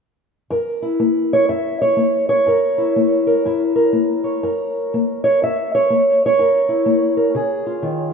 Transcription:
0.50 F#2 A#4
0.82 E4
1.00 A#3
1.33 C#5
1.49 F#2 E5
1.82 C#5
1.97 A#3
2.29 C#5
2.46 F#2 A#4
2.78 E4
2.96 A#3
3.27 A#4
3.45 F#2 E4
3.76 A#4
3.93 A#3
4.24 C#5
4.43 F#2 A#4
4.94 A#3
5.24 C#5
5.42 F#2 E5
5.75 C#5
5.90 A#3
6.26 C#5
6.39 F#2 A#4
6.69 E4
6.86 A#3
7.17 A#4
7.35 C#3 G#4
7.66 F4
7.83 D#3

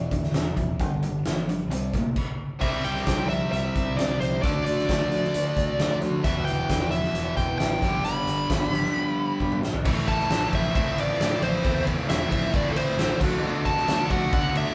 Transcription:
Already playing: E2 B2 E3 G3 D4 E4
0.11 E1 E2 D3, kick, closed hi-hat
0.24 snare
0.32 E1 E2 C#3 E3 G3 D4 E4, snare, closed hi-hat
0.56 E1 E2 B2 E3 G3 D4 E4, kick, closed hi-hat
0.79 G1 G2 D3 G3 B3 D4 G4, kick, closed hi-hat
1.02 G2 D3, closed hi-hat
1.24 G1 G2 E3 G3 B3 D4 G4, snare, closed hi-hat
1.49 G2 D3, closed hi-hat
1.69 C2 C3 G3 C4 D4 E4, closed hi-hat
1.94 A2 C3 A#3, kick, closed hi-hat
2.16 kick, crash
2.61 C2 C3 E3 G3 C4 E4 E5, kick, crash
2.83 C2 G3 C4 E4 G5, closed hi-hat
2.96 snare
3.07 C2 C3 E3 G3 C4 E4, kick, snare, closed hi-hat
3.29 G3 C4 E4 E5, closed hi-hat
3.52 C2 E3 G3 C4 E4 E5, closed hi-hat
3.76 C2, kick, closed hi-hat
3.97 C2 C3 E3 G3 C4 D5, snare, closed hi-hat
4.01 E4
4.20 C2 G3 C4 E4 C5, closed hi-hat
4.42 D2 D3 A3 D4 F#4 D5, kick, closed hi-hat
4.65 D2 A3 D4 F#4 D5, closed hi-hat
4.78 snare
4.88 D2 D3 A3 D4 F#4, kick, snare, closed hi-hat
5.11 A3 D4 F#4, snare, closed hi-hat
5.24 snare
5.34 D2 D3 A3 D4 F#4, closed hi-hat
5.57 D2, kick, closed hi-hat
5.79 D2 D3 A3 D4 F#4, snare, closed hi-hat
6.01 D2 A3 D4 F#4, closed hi-hat
6.24 E1 E2 B2 E3 G3 D4 E4 E5, kick, closed hi-hat
6.45 E1 D4 E4 G5, closed hi-hat
6.49 E3 G3
6.69 E1 E2 B2 E3 G3 D4 E4, kick, snare, closed hi-hat
6.91 D4 E4 E5, closed hi-hat
6.95 E3 G3
7.04 snare
7.14 E1 E3 G3 D4, closed hi-hat
7.18 E4
7.37 E1 G5, kick, closed hi-hat
7.58 A1 E2 B2 E3 G3 D4 E4 G5, snare, closed hi-hat
7.82 G1 G2 D3 B3 D4 G4, kick, closed hi-hat
7.86 G3
8.04 G1 G2 D3 G3 B3 D4 G4 B5, closed hi-hat
8.27 G1 G3 B3 D4 G4, closed hi-hat
8.50 G#1 G2 D3 G3 B3 D4 G4, kick, snare, closed hi-hat
8.73 G3 B3 D4 G4, snare, closed hi-hat
8.85 snare
8.94 G3 B3 D4 G4
9.39 G2 D3 G3 B3 D4 G4, kick
9.52 mid tom
9.62 G3 B3 D4 G4, snare
9.74 floor tom
9.85 A1 A2 E3 A3 C4 E4, kick, crash
10.08 A5, kick, ride
10.19 snare
10.29 A1 E3 A3 C4 E4, snare, ride
10.52 A1 A3 C4 E4 E5, kick, ride
10.74 A2 E3 A3 C4 E4 E5, kick, ride
10.96 A1, ride
11.01 D5
11.19 A2 E3 A3 C4 E4, snare, ride
11.41 A1 A3 C4 E4 C5, ride
11.63 E2 A2 E3 A3 C4 E4, kick, ride
11.87 kick, ride
12.09 E1 E3 A3 C4 E4 E5, snare, ride
12.30 A1 A3 C4 E4, kick, ride
12.52 A1 A2 E3 A3 C4 E4 D5, kick, ride
12.69 A4
12.76 C5, ride
12.97 A1 E3 A3 C4 E4, snare, ride
13.21 D2 D3 A3 B3 D4 F#4, kick, crash
13.42 D2 D3 A3 B3 D4 F#4
13.66 A5, kick, ride
13.77 snare
13.87 D2 D3 A3 B3 D4 F#4, snare, ride
14.09 D2 A3 B3 D4 F#4 F#5, kick, ride
14.31 D3 A3 B3 D4 F#4 F#5, kick, ride
14.55 D2 E5, ride

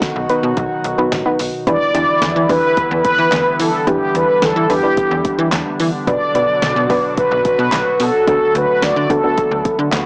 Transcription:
Already playing: B2 D#3 F#3 B3 D#4 F#4 A4
0.02 kick, snare, closed hi-hat
0.16 B1
0.29 B3 D#4 F#4 B4, closed hi-hat
0.43 B2
0.57 B1, kick, closed hi-hat
0.84 B1, closed hi-hat
0.98 B1 B3 D#4 F#4 B4
1.12 A1, kick, snare, closed hi-hat
1.26 B3 D#4 F#4 B4
1.39 B1, open hi-hat
1.67 E2 D3 E3 G3 B3 D4 E4 G4 B4 D5, kick, closed hi-hat
1.94 E2 D4 E4 G4 D5, closed hi-hat
2.22 E2, snare, closed hi-hat
2.36 E3
2.49 E2 D4 E4 G4 B4, kick, open hi-hat
2.77 kick, closed hi-hat
2.91 E2
3.05 B4, kick, closed hi-hat
3.18 E3
3.32 E2, snare, clap, closed hi-hat
3.60 E3 A4, open hi-hat
3.87 E2 D4 E4 G4 B4, kick, closed hi-hat
4.15 E2 B4, closed hi-hat
4.42 E2 A4, snare, closed hi-hat
4.56 E3
4.70 E2 D4 E4 G4 B4, open hi-hat
4.83 D4 E4 G4 B4
4.97 kick, closed hi-hat
5.11 E2
5.25 kick, closed hi-hat
5.39 E3
5.52 E2, snare, clap, closed hi-hat
5.80 E3, open hi-hat
6.07 B1 B2 F#3 B3 D4 F#4 B4 D5, kick, closed hi-hat
6.35 B1 B3 D4 F#4 B4, closed hi-hat
6.62 B1, snare, closed hi-hat
6.76 B2
6.90 B1 B3 D4 F#4 B4, kick, open hi-hat
7.17 B4, kick, closed hi-hat
7.31 B1
7.45 B4, kick, closed hi-hat
7.59 B2
7.72 B1, snare, clap, closed hi-hat
8.00 B2 A4, open hi-hat
8.27 D2 D3 A3 B3 D4 F#4 A4, kick, closed hi-hat
8.55 D2 B4, closed hi-hat
8.82 D2 D5, snare, closed hi-hat
8.96 D3
9.10 D2 B3 D4 F#4 A4, kick, closed hi-hat
9.24 B3 D4 F#4 A4
9.38 kick, closed hi-hat
9.51 D2
9.65 kick, closed hi-hat
9.79 D3
9.93 D2, snare, clap, closed hi-hat

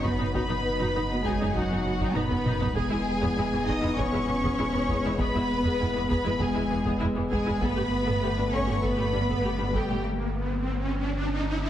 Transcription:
Already playing: F#1 F#3 D#4
0.03 F#2 B3 D#4 F#4 B4 B5, taiko
0.19 F#2 B3 D#4
0.33 F#2 B3 D#4 F#4 B4 B5, taiko
0.49 F#2 B3 D#4
0.80 F#2 D#4 F#4
0.95 F#2 B3 D#4
1.10 F#2 F#3 B3
1.24 F#2 G#3 D#4 F#4 G#4 G#5, taiko
1.41 F#2 B3 D#4
1.53 F#2 F#3 D#4 F#4 F#5, taiko
1.70 F#2 B3 D#4
1.85 F#2 F#3 B3
2.00 F#2 D#4 F#4, taiko
2.15 F#2 B3 D#4 B4 B5, taiko mid
2.30 F#2 F#3 B3, taiko low-mid
2.45 F#2 D#4 F#4, taiko mid
2.61 F#2 B3 D#4, taiko low
2.75 E1 E2 G#3 B3 G#4 G#5, taiko
2.91 E2 G#3 E4
3.22 E2 B3 G#4
3.37 E2 G#3 E4
3.52 E2 E3 B3
3.66 E2 B3 D#4 G#4 D#5 D#6, taiko
3.82 E2 G#3 E4
3.96 E2 B3 C#4 G#4 C#5 C#6, taiko
4.12 E2 G#3 E4
4.27 E2 E3 B3
4.42 E2 B3 G#4, taiko
4.58 E2 G#3 E4
4.73 E2 E3 B3
4.89 E2 B3 G#4, taiko
5.04 E2 G#3 E4
5.18 E2 B3 G#4 B4 B5, taiko
5.34 E2 G#3 E4
5.64 E2 B3 G#4
5.80 E2 G#3 E4
5.94 E2 E3 B3
6.09 E2 B3 G#4 B4 B5, taiko
6.24 E2 G#3 E4
6.39 E2 G#3 B3 G#4 G#5, taiko
6.55 E2 G#3 E4
6.70 E2 E3 B3
6.85 E2 B3 G#4, taiko
7.00 E2 G#3 E4
7.15 E2 E3 B3
7.30 E2 G#3 B3 G#4 G#5, taiko
7.46 E2 G#3 E4
7.61 G1 G2 A3 B3 A4 B4 B5, taiko, riser
7.77 G2 A3 G4
8.06 G2 B3 A4
8.22 G2 A3 G4
8.37 G2 G3 D4
8.52 G2 B3 C#4 A4 C#5 C#6, taiko
8.66 G2 A3 G4
8.81 G2 B3 A4 B4 B5, taiko
8.97 G2 A3 G4
9.13 G2 G3 D4
9.28 G2 B3 A4, taiko
9.43 G2 A3 G4
9.58 G2 G3 D4
9.74 G2 G3 B3 G4 A4 G5, taiko
9.89 G2 A3 G4

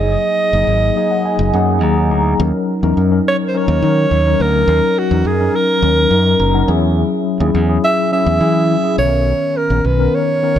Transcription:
Already playing: F#1 F#3 A#3 D#4 G#4 D#5
0.53 F#1 F#3 A#3 D#4 G#4
0.67 G#1
0.95 F#3 A#3 D#4 G#4 D#5
1.11 F#5
1.25 G#5
1.39 F#1
1.53 F#2 F#3 A#3 D#4 G#4 F#5
1.82 D#2 F#3 A#3 D#4 G#4 A#5
2.11 D2 A#5
2.40 D#2 F#3 C#4 D#4 A#4
2.83 E2 F#3 C#4 D#4 A#4
2.97 F#2
3.11 F#3 C#4 D#4 A#4
3.28 C#5
3.48 C5
3.54 F#3 C#4 D#4 A#4 C#5
3.68 D#2
3.82 D#3 F#3 C#4 D#4 A#4
4.11 D#2
4.25 F#3 C#4 D#4 A#4
4.40 D2 A#4
4.68 D#2 F#3 C#4 D#4 A#4
4.99 F#4
5.11 E2 F#3 C#4 D#4 A#4
5.25 F#2 G#4
5.40 F#3 C#4 D#4 A#4
5.56 A#4
5.82 D#2 F#3 C#4 D#4 A#4
6.11 F#2 F#3 C#4 D#4 A#4
6.40 F#1 A#5
6.54 F#3 C#4 D#4 A#4 F#5
6.68 E2 F#3 C#4 E4 G#4 E5
7.40 D#2 F#3 C#4 E4 G#4
7.55 E2
7.69 F#3 C#4 E4 G#4
7.84 E5
8.12 F#3 C#4 E4 G#4 E5
8.26 E2
8.40 E3 F#3 C#4 E4 G#4
8.83 F#3 C#4 E4 G#4
8.98 B1 D3 B3 C#4 A#4 C#5
9.05 D#3
9.57 A#4
9.70 A#1 D#3 B3 C#4 A#4
9.85 B1 B4
9.98 D#3 B3 C#4 A#4
10.15 C#5
10.42 D#3 B3 C#4 A#4

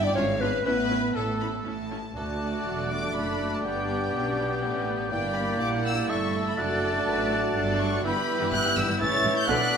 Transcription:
Already playing: G5
0.02 D4 D5
0.14 G#1 G#2 C#4 D4 F4 C#5 F5
0.39 B3 D4 F4 B4
0.64 A1 A2 B3 C#4 E4 B4 E5
0.91 C#4 E4
1.16 A1 A2 A3 C#4 E4 A4 E5
1.40 C#4 E4 B5
1.65 A1 A2 C#4 E4 A5
1.91 C#4 E4
2.15 D2 A3 D4 F#4 A4 D5 A5 F#6
2.42 D5
2.66 E1 E2 F#3 D4
2.90 G3 D6
3.15 F#1 F#2 A3 A4 D5 B5
3.52 A5
3.64 G1 G2 B3 D4 G4 B4 G5 G6
3.90 B3
4.14 B1 B2 C#4 D4
4.39 B3
4.63 A1 A2 C#4 D4 B4
4.89 B3
5.10 G1 G2 A#3 D4 E4 G4 D5 G5
5.35 B5
5.60 A#1 A#2 F#5 D6
5.84 E6
6.08 G1 G2 A3 E4 A4 E5 C#6 A6
6.46 B5
6.57 F#1 F#2 A3 D4 F#4 A4 D5 F#5 A5
7.07 A1 A2 F#3 B4 D5
7.31 A4
7.56 G1 G2 F#3 D4 A4 D5
7.79 C#6
8.03 G1 G2 E3 G3 B3 E4 G4 B4 E5 B5 G6
8.40 G2 E3
8.52 G1 G2 E3 F#6
8.64 G2 E3
8.76 G1 G2 E3 E6
8.88 G2 E3
8.99 A1 A2 C#3 E3 A3 C#4 E4 C#5 E5 A6
9.12 A2 C#3
9.24 A1 A2 E3
9.37 G6
9.47 B1 B2 D3 B3 D4 F#4 D5 F#5 F#6 B6

